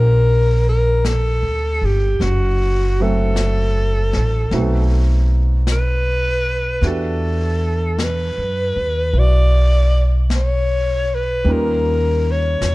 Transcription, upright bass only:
0, 0, Header, 1, 2, 480
1, 0, Start_track
1, 0, Tempo, 1156069
1, 913, Time_signature, 4, 2, 24, 8
1, 5293, End_track
2, 0, Start_track
2, 0, Title_t, "Upright bass"
2, 0, Program_c, 0, 32
2, 0, Note_on_c, 0, 34, 68
2, 577, Note_off_c, 0, 34, 0
2, 591, Note_on_c, 0, 38, 49
2, 741, Note_off_c, 0, 38, 0
2, 754, Note_on_c, 0, 31, 57
2, 902, Note_off_c, 0, 31, 0
2, 913, Note_on_c, 0, 30, 66
2, 1705, Note_off_c, 0, 30, 0
2, 1723, Note_on_c, 0, 33, 51
2, 1864, Note_off_c, 0, 33, 0
2, 1873, Note_on_c, 0, 35, 67
2, 2818, Note_off_c, 0, 35, 0
2, 2829, Note_on_c, 0, 40, 67
2, 3457, Note_off_c, 0, 40, 0
2, 3479, Note_on_c, 0, 42, 49
2, 3627, Note_off_c, 0, 42, 0
2, 3637, Note_on_c, 0, 39, 51
2, 3787, Note_off_c, 0, 39, 0
2, 3792, Note_on_c, 0, 35, 68
2, 4739, Note_off_c, 0, 35, 0
2, 4753, Note_on_c, 0, 39, 71
2, 5218, Note_off_c, 0, 39, 0
2, 5235, Note_on_c, 0, 40, 63
2, 5293, Note_off_c, 0, 40, 0
2, 5293, End_track
0, 0, End_of_file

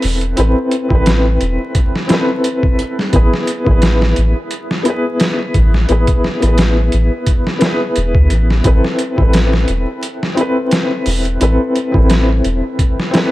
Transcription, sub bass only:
0, 0, Header, 1, 2, 480
1, 0, Start_track
1, 0, Key_signature, 0, "minor"
1, 0, Tempo, 689655
1, 261, Time_signature, 4, 2, 24, 8
1, 9267, End_track
2, 0, Start_track
2, 0, Title_t, "Sub bass"
2, 0, Program_c, 0, 38
2, 28, Note_on_c, 0, 28, 90
2, 239, Note_off_c, 0, 28, 0
2, 266, Note_on_c, 0, 33, 98
2, 380, Note_off_c, 0, 33, 0
2, 634, Note_on_c, 0, 33, 97
2, 961, Note_off_c, 0, 33, 0
2, 983, Note_on_c, 0, 28, 82
2, 1098, Note_off_c, 0, 28, 0
2, 2182, Note_on_c, 0, 33, 100
2, 2298, Note_off_c, 0, 33, 0
2, 2554, Note_on_c, 0, 33, 103
2, 2881, Note_off_c, 0, 33, 0
2, 2908, Note_on_c, 0, 33, 82
2, 3021, Note_off_c, 0, 33, 0
2, 3861, Note_on_c, 0, 33, 86
2, 4075, Note_off_c, 0, 33, 0
2, 4104, Note_on_c, 0, 33, 96
2, 4219, Note_off_c, 0, 33, 0
2, 4474, Note_on_c, 0, 33, 90
2, 4801, Note_off_c, 0, 33, 0
2, 4827, Note_on_c, 0, 33, 84
2, 4940, Note_off_c, 0, 33, 0
2, 5547, Note_on_c, 0, 28, 104
2, 5660, Note_off_c, 0, 28, 0
2, 5672, Note_on_c, 0, 38, 91
2, 5768, Note_off_c, 0, 38, 0
2, 5782, Note_on_c, 0, 33, 88
2, 5996, Note_off_c, 0, 33, 0
2, 6019, Note_on_c, 0, 33, 96
2, 6136, Note_off_c, 0, 33, 0
2, 6392, Note_on_c, 0, 33, 90
2, 6720, Note_off_c, 0, 33, 0
2, 6743, Note_on_c, 0, 28, 79
2, 6858, Note_off_c, 0, 28, 0
2, 7701, Note_on_c, 0, 28, 83
2, 7915, Note_off_c, 0, 28, 0
2, 7944, Note_on_c, 0, 33, 93
2, 8058, Note_off_c, 0, 33, 0
2, 8314, Note_on_c, 0, 33, 96
2, 8641, Note_off_c, 0, 33, 0
2, 8666, Note_on_c, 0, 28, 81
2, 8780, Note_off_c, 0, 28, 0
2, 9267, End_track
0, 0, End_of_file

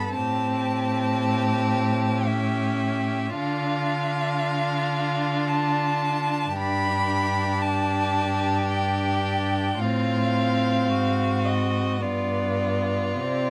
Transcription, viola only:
0, 0, Header, 1, 2, 480
1, 0, Start_track
1, 0, Tempo, 1067616
1, 71, Time_signature, 3, 2, 24, 8
1, 3911, Tempo, 1092896
1, 4871, Tempo, 1136364
1, 5351, Tempo, 1202405
1, 5941, End_track
2, 0, Start_track
2, 0, Title_t, "Viola"
2, 0, Program_c, 0, 41
2, 0, Note_on_c, 0, 59, 34
2, 52, Note_off_c, 0, 59, 0
2, 69, Note_on_c, 0, 60, 41
2, 1016, Note_on_c, 0, 61, 41
2, 1023, Note_off_c, 0, 60, 0
2, 1507, Note_off_c, 0, 61, 0
2, 1512, Note_on_c, 0, 62, 41
2, 2935, Note_off_c, 0, 62, 0
2, 2957, Note_on_c, 0, 62, 44
2, 4396, Note_on_c, 0, 60, 45
2, 4402, Note_off_c, 0, 62, 0
2, 5353, Note_off_c, 0, 60, 0
2, 5356, Note_on_c, 0, 59, 37
2, 5831, Note_on_c, 0, 60, 38
2, 5837, Note_off_c, 0, 59, 0
2, 5941, Note_off_c, 0, 60, 0
2, 5941, End_track
0, 0, End_of_file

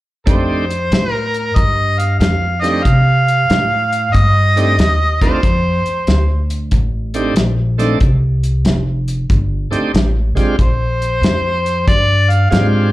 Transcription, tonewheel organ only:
0, 0, Header, 1, 2, 480
1, 0, Start_track
1, 0, Tempo, 645161
1, 199, Time_signature, 4, 2, 24, 8
1, 9616, End_track
2, 0, Start_track
2, 0, Title_t, "Tonewheel organ"
2, 0, Program_c, 0, 16
2, 191, Note_on_c, 0, 57, 60
2, 194, Note_on_c, 0, 60, 55
2, 196, Note_on_c, 0, 62, 58
2, 200, Note_on_c, 0, 63, 51
2, 202, Note_on_c, 0, 67, 67
2, 482, Note_off_c, 0, 57, 0
2, 483, Note_off_c, 0, 60, 0
2, 484, Note_off_c, 0, 62, 0
2, 486, Note_off_c, 0, 63, 0
2, 487, Note_off_c, 0, 67, 0
2, 1948, Note_on_c, 0, 57, 67
2, 1951, Note_on_c, 0, 60, 52
2, 1954, Note_on_c, 0, 62, 55
2, 1956, Note_on_c, 0, 63, 63
2, 1961, Note_on_c, 0, 67, 69
2, 2099, Note_off_c, 0, 57, 0
2, 2101, Note_off_c, 0, 60, 0
2, 2103, Note_off_c, 0, 62, 0
2, 2104, Note_off_c, 0, 63, 0
2, 2106, Note_off_c, 0, 67, 0
2, 3393, Note_on_c, 0, 57, 63
2, 3397, Note_on_c, 0, 60, 65
2, 3399, Note_on_c, 0, 62, 56
2, 3404, Note_on_c, 0, 63, 63
2, 3407, Note_on_c, 0, 67, 71
2, 3543, Note_off_c, 0, 57, 0
2, 3544, Note_off_c, 0, 60, 0
2, 3546, Note_off_c, 0, 62, 0
2, 3548, Note_off_c, 0, 63, 0
2, 3550, Note_off_c, 0, 67, 0
2, 3877, Note_on_c, 0, 57, 74
2, 3878, Note_on_c, 0, 60, 71
2, 3882, Note_on_c, 0, 63, 70
2, 3883, Note_on_c, 0, 62, 65
2, 3891, Note_on_c, 0, 65, 78
2, 4025, Note_off_c, 0, 57, 0
2, 4025, Note_off_c, 0, 60, 0
2, 4027, Note_off_c, 0, 63, 0
2, 4028, Note_off_c, 0, 62, 0
2, 4032, Note_off_c, 0, 65, 0
2, 5313, Note_on_c, 0, 57, 68
2, 5317, Note_on_c, 0, 60, 64
2, 5319, Note_on_c, 0, 62, 61
2, 5324, Note_on_c, 0, 63, 61
2, 5325, Note_on_c, 0, 67, 77
2, 5463, Note_off_c, 0, 57, 0
2, 5464, Note_off_c, 0, 60, 0
2, 5466, Note_off_c, 0, 62, 0
2, 5468, Note_off_c, 0, 63, 0
2, 5469, Note_off_c, 0, 67, 0
2, 5790, Note_on_c, 0, 57, 70
2, 5794, Note_on_c, 0, 60, 75
2, 5797, Note_on_c, 0, 62, 71
2, 5798, Note_on_c, 0, 63, 74
2, 5801, Note_on_c, 0, 69, 83
2, 5941, Note_off_c, 0, 57, 0
2, 5943, Note_off_c, 0, 60, 0
2, 5944, Note_off_c, 0, 62, 0
2, 5945, Note_off_c, 0, 63, 0
2, 5946, Note_off_c, 0, 69, 0
2, 7222, Note_on_c, 0, 57, 59
2, 7226, Note_on_c, 0, 60, 54
2, 7227, Note_on_c, 0, 62, 61
2, 7229, Note_on_c, 0, 63, 62
2, 7235, Note_on_c, 0, 67, 70
2, 7376, Note_off_c, 0, 57, 0
2, 7378, Note_off_c, 0, 60, 0
2, 7378, Note_off_c, 0, 62, 0
2, 7379, Note_off_c, 0, 63, 0
2, 7382, Note_off_c, 0, 67, 0
2, 7701, Note_on_c, 0, 56, 64
2, 7707, Note_on_c, 0, 60, 59
2, 7708, Note_on_c, 0, 62, 58
2, 7711, Note_on_c, 0, 65, 60
2, 7712, Note_on_c, 0, 67, 67
2, 7855, Note_off_c, 0, 56, 0
2, 7858, Note_off_c, 0, 60, 0
2, 7858, Note_off_c, 0, 62, 0
2, 7859, Note_off_c, 0, 65, 0
2, 7860, Note_off_c, 0, 67, 0
2, 9304, Note_on_c, 0, 56, 57
2, 9308, Note_on_c, 0, 60, 55
2, 9311, Note_on_c, 0, 62, 60
2, 9313, Note_on_c, 0, 65, 53
2, 9319, Note_on_c, 0, 67, 63
2, 9596, Note_off_c, 0, 56, 0
2, 9598, Note_off_c, 0, 60, 0
2, 9599, Note_off_c, 0, 62, 0
2, 9600, Note_off_c, 0, 65, 0
2, 9603, Note_off_c, 0, 67, 0
2, 9616, End_track
0, 0, End_of_file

